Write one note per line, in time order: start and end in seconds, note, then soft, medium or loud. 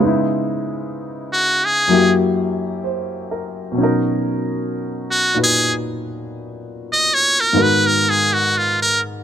0.00 1.86 C#3 medium
0.00 1.88 G#3 medium
0.00 1.89 B3 medium
0.00 1.91 D#4 medium
0.00 0.21 C5 medium
0.07 1.90 E4 medium
1.33 1.66 F#4 medium
1.65 2.14 G#4 medium
1.88 3.78 F#2 medium
1.88 3.74 F#3 medium
1.88 3.79 A#3 medium
1.88 3.80 E4 medium
1.93 3.81 G4 medium
2.84 3.60 C5 soft
3.31 3.82 A#4 soft
3.72 7.52 B2 medium
3.72 7.53 F#3 medium
3.78 7.55 C#4 medium
3.78 5.34 D#4 medium
3.83 7.56 A#4 medium
5.11 5.37 F#4 medium
5.34 7.54 A#2 soft
5.34 7.55 D#4 soft
5.34 7.55 F#4 soft
5.34 7.56 B4 soft
5.44 5.73 G#4 medium
6.92 7.15 D#5 medium
7.14 7.42 C#5 medium
7.40 7.64 A#4 medium
7.53 9.24 G#2 medium
7.53 9.24 D#3 medium
7.53 9.24 B3 medium
7.53 9.24 F#4 soft
7.58 9.24 A#4 medium
7.62 7.88 B4 medium
7.87 8.11 A#4 medium
8.10 8.35 G#4 medium
8.33 8.59 F#4 medium
8.58 8.82 F4 medium
8.82 9.01 A#4 medium